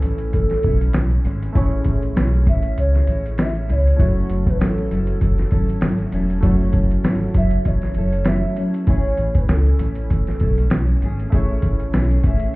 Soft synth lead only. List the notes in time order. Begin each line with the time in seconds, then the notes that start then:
Already playing: A4
0.33 A4
2.48 E5
2.80 C#5
3.41 E5
3.71 C#5
4.49 B4
4.63 A4
5.24 A4
7.37 E5
7.67 C#5
8.28 E5
8.59 C#5
9.37 B4
9.50 A4
10.12 A4
12.26 E5